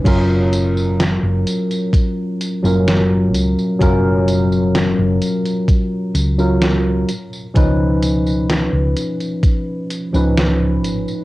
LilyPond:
<<
  \new Staff \with { instrumentName = "Tine electric piano" } { \time 4/4 \key fis \major \tempo 4 = 64 <fis cis' eis' ais'>2~ <fis cis' eis' ais'>8. <fis cis' eis' ais'>4~ <fis cis' eis' ais'>16 | <fis cis' eis' ais'>2~ <fis cis' eis' ais'>8. <fis cis' eis' ais'>8. r8 | <eis cis' dis' b'>2~ <eis cis' dis' b'>8. <eis cis' dis' b'>4~ <eis cis' dis' b'>16 | }
  \new Staff \with { instrumentName = "Fingered electric bass" } { \clef bass \time 4/4 \key fis \major fis,,4~ fis,,16 fis,,16 r4 r16 fis,,8. cis,16 r16 | fis,,4~ fis,,16 fis,,16 r4 cis,4 r8 | cis,4~ cis,16 cis,16 r4 r16 cis,8. gis,,16 r16 | }
  \new DrumStaff \with { instrumentName = "Drums" } \drummode { \time 4/4 <cymc hh bd tamb>8 <hh tamb>16 tamb16 <hh sn tamb>8 <hh tamb>16 <hh tamb>16 <hh bd tamb>8 <hh tamb>16 tamb16 <hh sn tamb>8 <hh tamb>16 tamb16 | <hh bd tamb>8 <hh tamb>16 tamb16 <hh sn tamb>8 <hh tamb>16 <hh tamb>16 <hh bd tamb>8 <hh tamb>16 tamb16 <hh sn tamb>8 <hh tamb>16 tamb16 | <hh bd tamb>8 <hh tamb>16 tamb16 <hh sn tamb>8 <hh tamb>16 <hh tamb>16 <hh bd tamb>8 <hh tamb>16 tamb16 <hh sn tamb>8 <hh tamb>16 tamb16 | }
>>